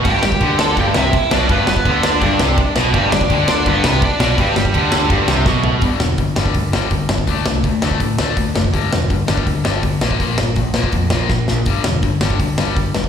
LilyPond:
<<
  \new Staff \with { instrumentName = "Overdriven electric guitar" } { \time 4/4 \key g \major \tempo 4 = 165 <g' g''>4. <a' a''>8 <g' g''>8 <e' e''>4 <d' d''>8 | <b b'>8 <b b'>4 <d' d''>2 r8 | <g g'>8 <d' d''>4 <d' d''>8 <b b'>8 <b b'>8 <d' d''>4 | <g g'>2. r4 |
r1 | r1 | r1 | r1 |
r1 | }
  \new Staff \with { instrumentName = "Distorted electric guitar" } { \clef bass \time 4/4 \key g \major g,8 g,8 d4 g,8 c8 r8 b,8 | g,8 g,8 d4 g,8 c8 r8 b,8 | g,8 g,8 d4 g,8 c8 r8 b,8 | g,8 g,8 d4 g,8 c8 b,4 |
<g, d g>8 <g, d>8 <g, d>8 <g, d g>8 <g, d>8 <g, d g>8 <g, d>8 <g, d>8 | <d a d'>8 <d a>8 <d a>8 <d a d'>8 <d a>8 <d a d'>8 <d a>8 <d a>8 | <g, d g>8 <g, d>8 <g, d>8 <g, d g>8 <g, d>8 <g, d g>8 <g, d>8 <bes, f bes>8 | <bes, f bes>8 <bes, f>8 <bes, f>8 <bes, f bes>8 <bes, f>8 <bes, f bes>8 <bes, f>8 <bes, f>8 |
<g, d g>8 <g, d>8 <g, d>8 <g, d g>8 <g, d>8 <g, d g>8 <g, d>8 <g, d>8 | }
  \new Staff \with { instrumentName = "Distorted electric guitar" } { \clef bass \time 4/4 \key g \major g,8 g,8 d4 g,8 c8 r8 b,8 | g,8 g,8 d4 g,8 c8 r8 b,8 | g,8 g,8 d4 g,8 c8 r8 b,8 | g,8 g,8 d4 g,8 c8 b,4 |
r1 | r1 | r1 | r1 |
r1 | }
  \new Staff \with { instrumentName = "Distorted electric guitar" } { \clef bass \time 4/4 \key g \major g,8 g,8 d4 g,8 c8 r8 b,8 | g,8 g,8 d4 g,8 c8 r8 b,8 | g,8 g,8 d4 g,8 c8 r8 b,8 | g,8 g,8 d4 g,8 c8 b,4 |
r1 | r1 | r1 | r1 |
r1 | }
  \new Staff \with { instrumentName = "Picked electric bass" } { \clef bass \time 4/4 \key g \major g,,8 g,,8 d,4 g,,8 c,8 r8 b,,8 | g,,8 g,,8 d,4 g,,8 c,8 r8 b,,8 | g,,8 g,,8 d,4 g,,8 c,8 r8 b,,8 | g,,8 g,,8 d,4 g,,8 c,8 b,,4 |
g,,8 e,,8 g,,8 g,,8 d,8 g,,8 g,,8 g,,8 | d,8 c,8 d,8 d,8 a,8 d,8 d,8 fis,,8 | g,,8 e,,8 g,,8 g,,8 d,8 g,,8 g,,8 bes,,8 | bes,,8 g,,8 bes,,8 bes,,8 f,8 bes,,8 bes,,8 bes,,8 |
g,,8 e,,8 g,,8 g,,8 d,8 g,,8 g,,8 g,,8 | }
  \new DrumStaff \with { instrumentName = "Drums" } \drummode { \time 4/4 <cymc bd>8 sn16 bd16 <cymc bd>8 sn8 <cymc bd>8 sn8 <cymc bd>8 sn8 | <cymc bd>8 sn16 bd16 <cymc bd>8 sn8 <cymc bd>8 sn8 <cymc bd>8 sn8 | <cymc bd>8 sn16 bd16 <cymc bd>8 sn8 <cymc bd>8 sn8 <cymc bd>8 sn8 | <cymc bd>8 sn16 bd16 <cymc bd>8 sn8 <cymc bd>8 sn8 <bd sn>8 tomfh8 |
<hho bd>8 sn8 <hho bd>8 sn16 bd16 <hho bd>8 sn8 <hho bd>8 sn16 bd16 | <hho bd>8 sn8 <hho bd>8 sn16 bd16 <hho bd>8 sn8 <hho bd>8 sn16 bd16 | <hho bd>8 sn8 <hho bd>8 sn16 bd16 <hho bd>8 sn8 <hho bd>8 sn16 bd16 | <hho bd>8 sn8 <hho bd>8 sn16 bd16 <hho bd>8 sn8 <bd sn>8 sn8 |
<hho bd>8 sn8 <hho bd>8 sn16 bd16 <hho bd>8 sn8 <hho bd>8 sn16 bd16 | }
>>